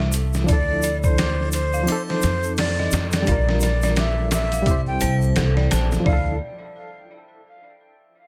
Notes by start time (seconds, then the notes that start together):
Already playing: C2 G3 C4 E4 A4 C5 D6
0.00 E5, snare
0.12 closed hi-hat, shaker
0.33 snare, shaker
0.44 F3 D4, shaker
0.48 D2 E4 D5, kick, closed hi-hat
0.53 A4
0.82 D5, closed hi-hat, shaker
1.03 C5 D5, kick, shaker
1.18 D6, snare, closed hi-hat, shaker
1.52 C5, closed hi-hat, shaker
1.73 F5, shaker
1.83 F3 C4, triangle
1.88 D#4 D6, closed hi-hat, shaker
1.92 A4
2.08 C5, snare
2.22 F2, snare, closed hi-hat, shaker
2.43 shaker
2.57 D5, snare, open hi-hat, shaker
2.79 D#5, snare
2.91 F2, snare, closed hi-hat, shaker
3.12 D5, snare, closed hi-hat, shaker
3.22 G3 D4
3.27 A#1 F4 D5, kick, closed hi-hat, shaker
3.31 A#4
3.49 snare
3.60 D5, snare, closed hi-hat, shaker
3.82 D5, snare, shaker
3.96 E5 D6, snare, closed hi-hat, shaker
4.31 E5, snare, closed hi-hat, shaker
4.52 F5, closed hi-hat, shaker
4.62 G3 C4, closed hi-hat
4.66 C2 E4 D6, kick, shaker
4.71 C5
4.87 G5
5.01 C2 C5, closed hi-hat, triangle, shaker
5.22 shaker
5.36 C2 A4, snare, closed hi-hat, shaker
5.57 D5, snare
5.71 A#1 A5, snare, closed hi-hat, shaker
5.92 E2, snare, shaker
6.00 F3
6.04 D2 D4 D5 F5, kick, floor tom
6.08 E4
6.13 A4